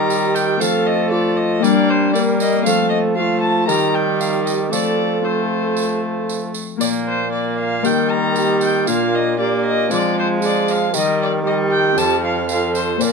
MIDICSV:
0, 0, Header, 1, 7, 480
1, 0, Start_track
1, 0, Tempo, 516351
1, 558, Time_signature, 4, 2, 24, 8
1, 12200, End_track
2, 0, Start_track
2, 0, Title_t, "Violin"
2, 0, Program_c, 0, 40
2, 0, Note_on_c, 0, 82, 91
2, 326, Note_on_c, 0, 79, 86
2, 340, Note_off_c, 0, 82, 0
2, 564, Note_on_c, 0, 77, 96
2, 577, Note_off_c, 0, 79, 0
2, 803, Note_on_c, 0, 75, 92
2, 817, Note_off_c, 0, 77, 0
2, 1023, Note_off_c, 0, 75, 0
2, 1029, Note_on_c, 0, 74, 86
2, 1272, Note_on_c, 0, 75, 88
2, 1286, Note_off_c, 0, 74, 0
2, 1514, Note_on_c, 0, 74, 100
2, 1528, Note_off_c, 0, 75, 0
2, 1766, Note_on_c, 0, 72, 86
2, 1780, Note_off_c, 0, 74, 0
2, 1974, Note_off_c, 0, 72, 0
2, 1979, Note_on_c, 0, 74, 91
2, 2054, Note_off_c, 0, 74, 0
2, 2228, Note_on_c, 0, 75, 92
2, 2455, Note_off_c, 0, 75, 0
2, 2460, Note_on_c, 0, 77, 97
2, 2689, Note_off_c, 0, 77, 0
2, 2695, Note_on_c, 0, 75, 88
2, 2769, Note_off_c, 0, 75, 0
2, 2935, Note_on_c, 0, 77, 94
2, 3167, Note_off_c, 0, 77, 0
2, 3172, Note_on_c, 0, 81, 99
2, 3413, Note_off_c, 0, 81, 0
2, 3419, Note_on_c, 0, 82, 93
2, 3668, Note_on_c, 0, 79, 82
2, 3682, Note_off_c, 0, 82, 0
2, 3906, Note_on_c, 0, 77, 73
2, 3920, Note_off_c, 0, 79, 0
2, 4133, Note_off_c, 0, 77, 0
2, 4139, Note_on_c, 0, 75, 70
2, 4213, Note_off_c, 0, 75, 0
2, 4382, Note_on_c, 0, 74, 93
2, 4874, Note_on_c, 0, 72, 66
2, 4888, Note_off_c, 0, 74, 0
2, 5842, Note_off_c, 0, 72, 0
2, 6324, Note_on_c, 0, 74, 79
2, 6399, Note_off_c, 0, 74, 0
2, 6577, Note_on_c, 0, 72, 86
2, 6802, Note_off_c, 0, 72, 0
2, 6808, Note_on_c, 0, 74, 72
2, 7043, Note_off_c, 0, 74, 0
2, 7053, Note_on_c, 0, 77, 89
2, 7304, Note_on_c, 0, 79, 90
2, 7318, Note_off_c, 0, 77, 0
2, 7534, Note_on_c, 0, 82, 92
2, 7548, Note_off_c, 0, 79, 0
2, 8011, Note_off_c, 0, 82, 0
2, 8021, Note_on_c, 0, 79, 87
2, 8250, Note_off_c, 0, 79, 0
2, 8260, Note_on_c, 0, 77, 92
2, 8500, Note_on_c, 0, 75, 93
2, 8514, Note_off_c, 0, 77, 0
2, 8728, Note_off_c, 0, 75, 0
2, 8734, Note_on_c, 0, 74, 79
2, 8964, Note_off_c, 0, 74, 0
2, 8981, Note_on_c, 0, 75, 99
2, 9207, Note_off_c, 0, 75, 0
2, 9230, Note_on_c, 0, 74, 96
2, 9452, Note_off_c, 0, 74, 0
2, 9477, Note_on_c, 0, 72, 86
2, 9551, Note_off_c, 0, 72, 0
2, 9722, Note_on_c, 0, 74, 95
2, 9954, Note_on_c, 0, 77, 87
2, 9968, Note_off_c, 0, 74, 0
2, 10177, Note_off_c, 0, 77, 0
2, 10200, Note_on_c, 0, 75, 91
2, 10415, Note_off_c, 0, 75, 0
2, 10436, Note_on_c, 0, 74, 94
2, 10510, Note_off_c, 0, 74, 0
2, 10662, Note_on_c, 0, 75, 82
2, 10736, Note_off_c, 0, 75, 0
2, 10889, Note_on_c, 0, 79, 101
2, 11136, Note_on_c, 0, 81, 106
2, 11150, Note_off_c, 0, 79, 0
2, 11367, Note_off_c, 0, 81, 0
2, 11383, Note_on_c, 0, 77, 86
2, 11606, Note_off_c, 0, 77, 0
2, 11619, Note_on_c, 0, 77, 84
2, 11845, Note_off_c, 0, 77, 0
2, 11865, Note_on_c, 0, 72, 75
2, 12096, Note_on_c, 0, 74, 82
2, 12110, Note_off_c, 0, 72, 0
2, 12200, Note_off_c, 0, 74, 0
2, 12200, End_track
3, 0, Start_track
3, 0, Title_t, "Recorder"
3, 0, Program_c, 1, 74
3, 0, Note_on_c, 1, 67, 78
3, 530, Note_off_c, 1, 67, 0
3, 554, Note_on_c, 1, 69, 84
3, 1038, Note_on_c, 1, 65, 72
3, 1052, Note_off_c, 1, 69, 0
3, 1500, Note_off_c, 1, 65, 0
3, 1505, Note_on_c, 1, 63, 72
3, 1543, Note_on_c, 1, 62, 78
3, 1552, Note_off_c, 1, 63, 0
3, 1999, Note_on_c, 1, 70, 90
3, 2013, Note_off_c, 1, 62, 0
3, 2454, Note_off_c, 1, 70, 0
3, 2460, Note_on_c, 1, 69, 82
3, 2933, Note_off_c, 1, 69, 0
3, 2946, Note_on_c, 1, 66, 62
3, 2983, Note_on_c, 1, 65, 67
3, 2992, Note_off_c, 1, 66, 0
3, 3415, Note_off_c, 1, 65, 0
3, 3420, Note_on_c, 1, 67, 77
3, 4375, Note_on_c, 1, 69, 69
3, 4389, Note_off_c, 1, 67, 0
3, 6075, Note_off_c, 1, 69, 0
3, 7277, Note_on_c, 1, 70, 75
3, 7729, Note_off_c, 1, 70, 0
3, 7775, Note_on_c, 1, 67, 74
3, 8252, Note_on_c, 1, 65, 74
3, 8266, Note_off_c, 1, 67, 0
3, 8722, Note_off_c, 1, 65, 0
3, 8728, Note_on_c, 1, 67, 72
3, 9195, Note_off_c, 1, 67, 0
3, 9214, Note_on_c, 1, 65, 72
3, 9678, Note_off_c, 1, 65, 0
3, 9686, Note_on_c, 1, 68, 83
3, 10149, Note_off_c, 1, 68, 0
3, 10155, Note_on_c, 1, 70, 88
3, 10627, Note_off_c, 1, 70, 0
3, 10640, Note_on_c, 1, 67, 81
3, 11311, Note_off_c, 1, 67, 0
3, 11597, Note_on_c, 1, 69, 72
3, 12079, Note_on_c, 1, 72, 56
3, 12093, Note_off_c, 1, 69, 0
3, 12123, Note_on_c, 1, 70, 60
3, 12132, Note_off_c, 1, 72, 0
3, 12200, Note_off_c, 1, 70, 0
3, 12200, End_track
4, 0, Start_track
4, 0, Title_t, "Harp"
4, 0, Program_c, 2, 46
4, 0, Note_on_c, 2, 51, 53
4, 0, Note_on_c, 2, 58, 41
4, 0, Note_on_c, 2, 63, 47
4, 0, Note_on_c, 2, 67, 49
4, 0, Note_on_c, 2, 70, 49
4, 275, Note_off_c, 2, 58, 0
4, 531, Note_on_c, 2, 60, 51
4, 541, Note_on_c, 2, 65, 47
4, 553, Note_on_c, 2, 69, 46
4, 557, Note_on_c, 2, 53, 51
4, 562, Note_off_c, 2, 63, 0
4, 566, Note_off_c, 2, 67, 0
4, 569, Note_off_c, 2, 70, 0
4, 577, Note_off_c, 2, 51, 0
4, 1478, Note_on_c, 2, 58, 54
4, 1490, Note_on_c, 2, 70, 53
4, 1512, Note_on_c, 2, 55, 62
4, 1521, Note_off_c, 2, 60, 0
4, 1526, Note_off_c, 2, 65, 0
4, 1532, Note_off_c, 2, 69, 0
4, 1534, Note_off_c, 2, 53, 0
4, 2436, Note_on_c, 2, 60, 52
4, 2452, Note_on_c, 2, 65, 54
4, 2465, Note_on_c, 2, 69, 54
4, 2472, Note_off_c, 2, 58, 0
4, 2475, Note_on_c, 2, 53, 57
4, 2478, Note_off_c, 2, 70, 0
4, 2489, Note_off_c, 2, 55, 0
4, 3391, Note_on_c, 2, 63, 50
4, 3399, Note_on_c, 2, 67, 47
4, 3417, Note_on_c, 2, 70, 49
4, 3427, Note_on_c, 2, 51, 54
4, 3430, Note_off_c, 2, 60, 0
4, 3438, Note_off_c, 2, 65, 0
4, 3445, Note_off_c, 2, 69, 0
4, 3450, Note_off_c, 2, 53, 0
4, 4357, Note_on_c, 2, 60, 42
4, 4368, Note_on_c, 2, 65, 43
4, 4379, Note_on_c, 2, 69, 44
4, 4390, Note_on_c, 2, 53, 49
4, 4392, Note_off_c, 2, 63, 0
4, 4396, Note_off_c, 2, 67, 0
4, 4405, Note_off_c, 2, 70, 0
4, 4410, Note_off_c, 2, 51, 0
4, 4834, Note_off_c, 2, 60, 0
4, 4845, Note_off_c, 2, 65, 0
4, 4845, Note_on_c, 2, 60, 43
4, 4856, Note_on_c, 2, 65, 46
4, 4858, Note_off_c, 2, 69, 0
4, 4869, Note_on_c, 2, 69, 45
4, 6295, Note_on_c, 2, 58, 45
4, 6296, Note_off_c, 2, 65, 0
4, 6308, Note_on_c, 2, 65, 42
4, 6323, Note_on_c, 2, 70, 47
4, 6328, Note_off_c, 2, 60, 0
4, 6334, Note_on_c, 2, 46, 50
4, 6340, Note_off_c, 2, 69, 0
4, 7258, Note_off_c, 2, 58, 0
4, 7269, Note_on_c, 2, 58, 49
4, 7284, Note_on_c, 2, 67, 48
4, 7288, Note_off_c, 2, 70, 0
4, 7299, Note_off_c, 2, 65, 0
4, 7299, Note_on_c, 2, 70, 49
4, 7307, Note_off_c, 2, 53, 0
4, 7309, Note_on_c, 2, 51, 51
4, 7312, Note_off_c, 2, 46, 0
4, 8234, Note_on_c, 2, 62, 49
4, 8241, Note_on_c, 2, 65, 48
4, 8243, Note_off_c, 2, 70, 0
4, 8254, Note_on_c, 2, 70, 48
4, 8260, Note_on_c, 2, 46, 57
4, 8266, Note_off_c, 2, 67, 0
4, 8278, Note_off_c, 2, 51, 0
4, 9190, Note_off_c, 2, 65, 0
4, 9193, Note_on_c, 2, 60, 51
4, 9201, Note_on_c, 2, 65, 53
4, 9211, Note_on_c, 2, 68, 53
4, 9214, Note_off_c, 2, 58, 0
4, 9216, Note_off_c, 2, 62, 0
4, 9222, Note_on_c, 2, 53, 60
4, 9226, Note_off_c, 2, 70, 0
4, 9229, Note_off_c, 2, 46, 0
4, 10154, Note_on_c, 2, 67, 48
4, 10167, Note_on_c, 2, 70, 47
4, 10174, Note_off_c, 2, 60, 0
4, 10178, Note_off_c, 2, 65, 0
4, 10182, Note_on_c, 2, 51, 60
4, 10183, Note_off_c, 2, 68, 0
4, 10188, Note_off_c, 2, 53, 0
4, 11089, Note_on_c, 2, 60, 54
4, 11099, Note_on_c, 2, 65, 52
4, 11105, Note_on_c, 2, 69, 53
4, 11121, Note_on_c, 2, 41, 58
4, 11135, Note_off_c, 2, 67, 0
4, 11141, Note_off_c, 2, 70, 0
4, 11149, Note_off_c, 2, 51, 0
4, 12059, Note_off_c, 2, 65, 0
4, 12059, Note_on_c, 2, 58, 43
4, 12070, Note_on_c, 2, 65, 38
4, 12085, Note_on_c, 2, 70, 42
4, 12086, Note_off_c, 2, 60, 0
4, 12093, Note_on_c, 2, 46, 48
4, 12094, Note_off_c, 2, 69, 0
4, 12102, Note_off_c, 2, 41, 0
4, 12200, Note_off_c, 2, 46, 0
4, 12200, Note_off_c, 2, 58, 0
4, 12200, Note_off_c, 2, 65, 0
4, 12200, Note_off_c, 2, 70, 0
4, 12200, End_track
5, 0, Start_track
5, 0, Title_t, "Viola"
5, 0, Program_c, 3, 41
5, 0, Note_on_c, 3, 55, 73
5, 558, Note_on_c, 3, 57, 69
5, 572, Note_off_c, 3, 55, 0
5, 1511, Note_on_c, 3, 58, 78
5, 1525, Note_off_c, 3, 57, 0
5, 1983, Note_off_c, 3, 58, 0
5, 1989, Note_on_c, 3, 58, 70
5, 2479, Note_on_c, 3, 57, 64
5, 2493, Note_off_c, 3, 58, 0
5, 2953, Note_off_c, 3, 57, 0
5, 2958, Note_on_c, 3, 57, 67
5, 3432, Note_on_c, 3, 55, 74
5, 3446, Note_off_c, 3, 57, 0
5, 4375, Note_off_c, 3, 55, 0
5, 4380, Note_on_c, 3, 57, 59
5, 4860, Note_off_c, 3, 57, 0
5, 4871, Note_on_c, 3, 57, 68
5, 6111, Note_off_c, 3, 57, 0
5, 6310, Note_on_c, 3, 58, 60
5, 6765, Note_off_c, 3, 58, 0
5, 6801, Note_on_c, 3, 58, 65
5, 7281, Note_on_c, 3, 55, 72
5, 7295, Note_off_c, 3, 58, 0
5, 8247, Note_on_c, 3, 58, 63
5, 8261, Note_off_c, 3, 55, 0
5, 8727, Note_off_c, 3, 58, 0
5, 8735, Note_on_c, 3, 58, 76
5, 9209, Note_on_c, 3, 56, 67
5, 9223, Note_off_c, 3, 58, 0
5, 10163, Note_off_c, 3, 56, 0
5, 10175, Note_on_c, 3, 55, 69
5, 10637, Note_off_c, 3, 55, 0
5, 10647, Note_on_c, 3, 55, 75
5, 11113, Note_off_c, 3, 55, 0
5, 11137, Note_on_c, 3, 53, 67
5, 11598, Note_off_c, 3, 53, 0
5, 11613, Note_on_c, 3, 53, 63
5, 12079, Note_off_c, 3, 53, 0
5, 12091, Note_on_c, 3, 53, 59
5, 12200, Note_off_c, 3, 53, 0
5, 12200, End_track
6, 0, Start_track
6, 0, Title_t, "Bassoon"
6, 0, Program_c, 4, 70
6, 0, Note_on_c, 4, 51, 73
6, 561, Note_on_c, 4, 53, 72
6, 575, Note_off_c, 4, 51, 0
6, 1514, Note_on_c, 4, 55, 76
6, 1528, Note_off_c, 4, 53, 0
6, 2468, Note_off_c, 4, 55, 0
6, 2473, Note_on_c, 4, 53, 67
6, 3423, Note_on_c, 4, 51, 74
6, 3437, Note_off_c, 4, 53, 0
6, 4380, Note_off_c, 4, 51, 0
6, 4386, Note_on_c, 4, 53, 59
6, 6047, Note_off_c, 4, 53, 0
6, 6336, Note_on_c, 4, 46, 66
6, 7286, Note_on_c, 4, 51, 74
6, 7300, Note_off_c, 4, 46, 0
6, 8247, Note_off_c, 4, 51, 0
6, 8255, Note_on_c, 4, 46, 66
6, 9206, Note_on_c, 4, 53, 76
6, 9220, Note_off_c, 4, 46, 0
6, 10176, Note_on_c, 4, 51, 72
6, 10190, Note_off_c, 4, 53, 0
6, 11133, Note_on_c, 4, 41, 79
6, 11147, Note_off_c, 4, 51, 0
6, 12081, Note_off_c, 4, 41, 0
6, 12087, Note_on_c, 4, 46, 64
6, 12200, Note_off_c, 4, 46, 0
6, 12200, End_track
7, 0, Start_track
7, 0, Title_t, "Drums"
7, 95, Note_on_c, 9, 54, 48
7, 188, Note_off_c, 9, 54, 0
7, 332, Note_on_c, 9, 54, 49
7, 425, Note_off_c, 9, 54, 0
7, 569, Note_on_c, 9, 54, 76
7, 662, Note_off_c, 9, 54, 0
7, 1527, Note_on_c, 9, 54, 57
7, 1620, Note_off_c, 9, 54, 0
7, 2003, Note_on_c, 9, 54, 47
7, 2096, Note_off_c, 9, 54, 0
7, 2232, Note_on_c, 9, 54, 47
7, 2325, Note_off_c, 9, 54, 0
7, 2475, Note_on_c, 9, 54, 80
7, 2568, Note_off_c, 9, 54, 0
7, 3429, Note_on_c, 9, 54, 55
7, 3522, Note_off_c, 9, 54, 0
7, 3911, Note_on_c, 9, 54, 50
7, 4004, Note_off_c, 9, 54, 0
7, 4156, Note_on_c, 9, 54, 52
7, 4249, Note_off_c, 9, 54, 0
7, 4395, Note_on_c, 9, 54, 76
7, 4488, Note_off_c, 9, 54, 0
7, 5360, Note_on_c, 9, 54, 50
7, 5453, Note_off_c, 9, 54, 0
7, 5851, Note_on_c, 9, 54, 47
7, 5944, Note_off_c, 9, 54, 0
7, 6084, Note_on_c, 9, 54, 49
7, 6177, Note_off_c, 9, 54, 0
7, 6328, Note_on_c, 9, 54, 73
7, 6421, Note_off_c, 9, 54, 0
7, 7294, Note_on_c, 9, 54, 53
7, 7387, Note_off_c, 9, 54, 0
7, 7768, Note_on_c, 9, 54, 45
7, 7861, Note_off_c, 9, 54, 0
7, 8005, Note_on_c, 9, 54, 47
7, 8097, Note_off_c, 9, 54, 0
7, 8248, Note_on_c, 9, 54, 81
7, 8341, Note_off_c, 9, 54, 0
7, 9211, Note_on_c, 9, 54, 57
7, 9304, Note_off_c, 9, 54, 0
7, 9686, Note_on_c, 9, 54, 44
7, 9779, Note_off_c, 9, 54, 0
7, 9929, Note_on_c, 9, 54, 47
7, 10022, Note_off_c, 9, 54, 0
7, 10168, Note_on_c, 9, 54, 80
7, 10261, Note_off_c, 9, 54, 0
7, 11134, Note_on_c, 9, 54, 59
7, 11227, Note_off_c, 9, 54, 0
7, 11609, Note_on_c, 9, 54, 51
7, 11702, Note_off_c, 9, 54, 0
7, 11852, Note_on_c, 9, 54, 52
7, 11945, Note_off_c, 9, 54, 0
7, 12091, Note_on_c, 9, 54, 69
7, 12184, Note_off_c, 9, 54, 0
7, 12200, End_track
0, 0, End_of_file